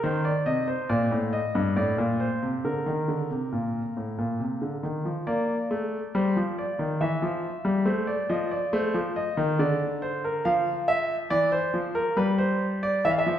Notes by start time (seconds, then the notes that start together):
0.04 D#3 C5
0.25 D5
0.46 C3 D#5
0.68 C5
0.89 A#2 D5
1.11 A2
1.33 D#5
1.55 G2
1.76 A2 D5
1.98 A#2
2.20 C5
2.43 C3
2.65 D3 A#4
2.86 D#3
3.08 D3
3.30 C3
3.52 A#2
3.97 A2
4.18 A#2
4.40 C3
4.62 D3
4.83 D#3
5.05 F3
5.27 A#3 D5
5.71 A3
6.15 G3 C5
6.36 F3
6.58 D5
6.79 D#3
7.01 E3 E5
7.22 F3
7.65 G3
7.85 A3 C5
8.07 D5
8.30 F3 D#5
8.51 D5
8.73 A3 C5
8.94 F3
9.16 D#5
9.37 D#3
9.59 D3 D5
10.02 C5
10.24 A#4
10.45 F3 F5
10.88 E5
11.30 E3 D5
11.52 C5
11.74 F3
11.95 A#4
12.17 G3 B4
12.38 C5
12.83 D5
13.05 E3 E5
13.11 F5
13.18 E5
13.26 F3